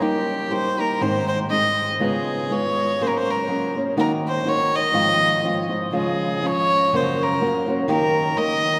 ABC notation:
X:1
M:2/4
L:1/16
Q:"Swing" 1/4=123
K:Db
V:1 name="Violin"
=G4 c2 B2 | c2 c2 e3 z | A4 d4 | c/2 B/2 c B4 z2 |
B2 c2 d2 e2- | e6 z2 | A4 d4 | c2 B4 z2 |
B4 e4 |]
V:2 name="Nylon-string guitar"
[=G,B,E=G]4 [G,B,EG]2 [B,EG]2 | [A,,E,A,CEA]4 [A,CEA]4 | [D,A,_CFA]4 [A,CFA]4 | [G,B,DA]4 [G,B,DA]2 [B,DA]2 |
[E,B,EG]4 [E,B,EG]4 | [A,,E,F,A,CF]4 [F,A,CF]2 [F,A,CF]2 | [D,F,A,DF]4 [F,A,DF]4 | [G,,D,G,B,DG]4 [G,B,DG]2 [G,B,DG]2 |
[E,B,E=G]4 [E,B,EG]4 |]